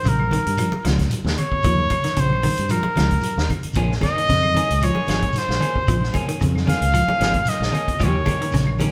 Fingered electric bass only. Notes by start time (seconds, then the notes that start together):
0.07 A#1
0.47 G2
0.73 muted fingered electric bass stroke
0.85 C#2
1.24 D#2
1.52 muted fingered electric bass stroke
1.65 D#2
2.18 A#1
2.59 G2
2.86 muted fingered electric bass stroke
2.98 C#2
3.37 D#2
3.65 muted fingered electric bass stroke
3.77 A#1
4.30 F2
4.71 C#2
5.08 G#1
5.49 A#1
5.76 muted fingered electric bass stroke
5.89 A#1
6.42 F2
6.81 C#2
7.08 muted fingered electric bass stroke
7.20 G#1
7.60 A#1
7.88 muted fingered electric bass stroke
8.01 D#2
8.54 A#1